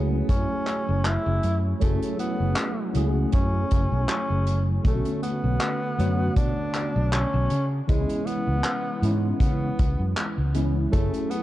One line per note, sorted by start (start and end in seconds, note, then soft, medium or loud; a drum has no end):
0.00 0.21 C#2 medium
0.00 1.80 F#3 medium
0.00 1.81 A3 medium
0.00 1.81 C#4 medium
0.00 1.82 E4 medium
0.00 1.83 G#4 medium
0.29 0.45 F#2 medium
0.29 1.07 C#4 loud
0.29 kick loud
0.29 closed hi-hat medium
0.67 clap medium
0.67 closed hi-hat medium
0.89 1.16 F#1 medium
1.05 1.64 E4 loud
1.05 clap loud
1.05 closed hi-hat medium
1.26 1.39 F#1 loud
1.43 1.73 F#2 medium
1.43 closed hi-hat medium
1.80 1.97 F#1 medium
1.80 2.90 F#3 medium
1.80 2.91 A3 medium
1.80 2.17 A3 medium
1.80 2.91 C#4 medium
1.80 2.91 E4 medium
1.80 2.92 G#4 loud
1.80 kick loud
1.80 closed hi-hat medium
2.02 closed hi-hat medium
2.19 2.91 B3 medium
2.19 closed hi-hat medium
2.40 2.53 F#1 medium
2.56 clap loud
2.56 closed hi-hat medium
2.93 3.24 C#2 loud
2.93 4.80 F#3 medium
2.93 4.80 A3 medium
2.93 4.81 C#4 medium
2.93 4.81 E4 medium
2.93 4.82 G#4 medium
2.93 closed hi-hat medium
3.32 3.62 F#2 medium
3.32 4.05 C#4 loud
3.32 kick loud
3.32 closed hi-hat medium
3.71 3.87 F#1 medium
3.71 kick medium
3.71 closed hi-hat medium
3.92 4.05 B1 medium
4.08 4.64 C#4 loud
4.08 clap loud
4.08 closed hi-hat medium
4.30 4.78 F#1 medium
4.47 closed hi-hat medium
4.83 5.00 B1 loud
4.83 5.94 D3 medium
4.83 5.94 A3 medium
4.83 5.21 A3 medium
4.83 5.95 B3 medium
4.83 5.95 C#4 medium
4.83 5.95 F#4 loud
4.83 kick loud
4.83 closed hi-hat medium
5.05 closed hi-hat soft
5.23 6.33 B3 loud
5.23 closed hi-hat medium
5.44 5.57 B1 medium
5.61 clap loud
5.61 closed hi-hat medium
5.97 6.28 F#2 medium
5.97 7.48 D3 medium
5.97 7.48 A3 medium
5.97 7.49 B3 medium
5.97 7.49 F#4 medium
5.97 7.49 C#5 medium
5.97 closed hi-hat medium
6.36 6.52 B2 medium
6.36 7.14 D4 loud
6.36 kick loud
6.36 closed hi-hat medium
6.74 clap medium
6.74 closed hi-hat medium
6.96 7.23 B1 medium
7.12 7.72 C#4 loud
7.12 clap loud
7.12 closed hi-hat medium
7.34 7.46 B1 loud
7.50 7.80 C#3 medium
7.50 closed hi-hat medium
7.87 8.04 C#2 medium
7.87 8.98 E3 medium
7.87 8.98 G#3 medium
7.87 8.28 G#3 medium
7.87 8.99 B3 medium
7.87 8.99 C#4 medium
7.87 8.99 E4 loud
7.87 kick loud
7.87 closed hi-hat medium
8.09 closed hi-hat medium
8.26 9.15 B3 loud
8.26 closed hi-hat medium
8.47 8.60 C#2 medium
8.64 clap loud
8.64 closed hi-hat medium
9.01 9.32 G#2 medium
9.01 10.51 E3 medium
9.01 10.51 G#3 medium
9.01 10.51 B3 medium
9.01 10.52 C#4 medium
9.01 10.52 E4 medium
9.01 closed hi-hat medium
9.40 9.70 C#3 medium
9.40 10.13 B3 medium
9.40 kick loud
9.40 closed hi-hat medium
9.79 9.94 C#2 medium
9.79 kick loud
9.79 closed hi-hat medium
9.99 10.12 F#2 medium
10.17 clap loud
10.17 closed hi-hat medium
10.38 10.86 C#2 medium
10.54 10.88 E3 medium
10.54 10.88 G#3 medium
10.54 10.88 B3 medium
10.54 10.89 C#4 medium
10.54 10.89 E4 medium
10.54 closed hi-hat medium
10.91 11.08 F#1 medium
10.91 11.43 F#3 medium
10.91 11.43 A3 medium
10.91 11.32 A3 loud
10.91 11.43 C#4 medium
10.91 11.43 E4 medium
10.91 11.43 G#4 loud
10.91 kick loud
10.91 closed hi-hat medium
11.14 closed hi-hat medium
11.30 11.43 B3 loud
11.30 closed hi-hat medium